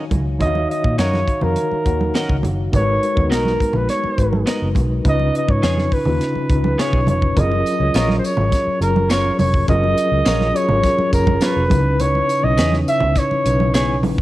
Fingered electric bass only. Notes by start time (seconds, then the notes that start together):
0.11 C#2
0.41 D#2
0.84 A#2
0.98 F#2
1.43 F2
1.72 muted fingered electric bass stroke
1.86 D#2
2.30 C#2
2.44 F#1
2.73 G#1
3.17 D#2
3.32 B1
3.75 A#1
4.05 muted fingered electric bass stroke
4.18 G#1
4.62 F#1
4.76 B1
5.05 C#2
5.49 G#2
5.63 F2
6.06 D#2
6.36 muted fingered electric bass stroke
6.50 C#2
6.93 B1
7.07 F1
7.37 F#1
7.80 C#2
7.94 A#1
8.37 G#1
8.67 muted fingered electric bass stroke
8.81 F#1
9.39 F1
9.69 F#1
10.12 C#2
10.26 A#1
10.70 G#1
10.99 muted fingered electric bass stroke
11.13 F#1
11.56 F1
11.71 C#2
12.44 B1
12.58 E2
13.02 C#2
13.31 muted fingered electric bass stroke
13.45 B1
14.04 A#1